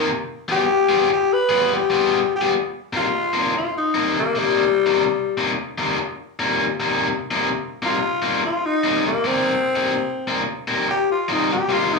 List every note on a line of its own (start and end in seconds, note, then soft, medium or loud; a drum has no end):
0.48 0.62 G3 medium
0.48 0.62 B3 medium
0.48 0.62 F4 medium
0.48 1.10 G4 loud
0.48 0.62 G#4 loud
0.89 1.08 G3 medium
0.89 1.09 B3 medium
0.89 1.09 F4 loud
0.89 1.09 G#4 loud
1.09 muted overdriven electric guitar stroke medium
1.13 1.35 G4 medium
1.33 1.72 B4 loud
1.49 1.74 G3 medium
1.49 1.74 B3 medium
1.49 1.74 F4 medium
1.49 1.73 G#4 loud
1.74 2.32 G4 medium
1.90 2.17 G3 medium
1.90 2.18 B3 medium
1.90 2.18 F4 medium
1.90 2.18 G#4 medium
2.36 2.53 G4 loud
2.41 2.52 G3 medium
2.41 2.52 B3 loud
2.41 2.52 F4 medium
2.41 2.52 G#4 loud
2.93 3.06 C3 medium
2.93 3.06 G3 medium
2.93 3.06 A#3 medium
2.93 3.06 D#4 medium
2.93 3.54 F4 loud
3.33 3.53 C3 medium
3.33 3.53 G3 medium
3.33 3.53 A#3 medium
3.33 3.54 D#4 medium
3.54 3.75 F4 medium
3.54 muted overdriven electric guitar stroke soft
3.78 4.16 D#4 medium
3.94 4.19 C3 medium
3.94 4.19 G3 medium
3.94 4.19 A#3 medium
3.94 4.18 D#4 medium
4.19 4.40 A#3 loud
4.35 4.62 C3 medium
4.35 4.62 G3 medium
4.35 5.55 G3 loud
4.35 4.63 A#3 medium
4.35 4.63 D#4 medium
4.86 5.03 C3 medium
4.86 5.03 G3 medium
4.86 5.03 A#3 medium
4.86 5.02 D#4 medium
5.37 5.50 C3 medium
5.37 5.51 G3 medium
5.37 5.51 A#3 medium
5.37 5.51 D#4 medium
5.78 5.98 C3 medium
5.78 5.98 G3 medium
5.78 5.98 A#3 medium
5.78 5.98 D#4 medium
5.99 muted overdriven electric guitar stroke soft
6.39 6.64 C3 medium
6.39 6.63 G3 medium
6.39 6.63 A#3 loud
6.39 6.63 D#4 medium
6.80 7.07 C3 medium
6.80 7.07 G3 medium
6.80 7.07 A#3 medium
6.80 7.07 D#4 medium
7.31 7.48 C3 medium
7.31 7.47 G3 medium
7.31 7.47 A#3 medium
7.31 7.47 D#4 medium
7.82 7.95 C3 medium
7.82 7.95 G3 medium
7.82 7.96 A#3 medium
7.82 7.96 D#4 medium
7.82 8.44 F4 loud
8.22 8.42 C3 medium
8.22 8.42 G3 medium
8.22 8.42 A#3 medium
8.22 8.42 D#4 loud
8.43 8.67 F4 medium
8.43 muted overdriven electric guitar stroke soft
8.65 9.05 D#4 loud
8.84 9.08 C3 medium
8.84 9.08 G3 medium
8.84 9.08 A#3 medium
8.84 9.08 D#4 loud
9.07 9.29 A#3 loud
9.24 9.51 C3 medium
9.24 9.52 G3 medium
9.24 9.52 A#3 medium
9.24 10.45 C4 loud
9.24 9.52 D#4 medium
9.76 9.92 C3 medium
9.76 9.92 G3 medium
9.76 9.92 A#3 medium
9.76 9.92 D#4 loud
10.27 10.40 C3 medium
10.27 10.40 G3 medium
10.27 10.41 A#3 medium
10.27 10.41 D#4 medium
10.68 10.87 C3 medium
10.68 10.87 G3 medium
10.68 10.88 A#3 medium
10.68 10.88 D#4 medium
10.89 11.09 G4 loud
10.89 muted overdriven electric guitar stroke soft
11.12 11.34 F4 medium
11.29 11.53 C3 medium
11.29 11.53 G3 medium
11.29 11.53 A#3 medium
11.29 11.53 D#4 medium
11.33 11.51 D#4 medium
11.53 11.74 G4 medium
11.69 11.96 C3 medium
11.69 11.96 G3 medium
11.69 11.97 A#3 medium
11.69 11.97 D#4 loud
11.69 11.95 F4 loud
11.94 11.99 D#4 medium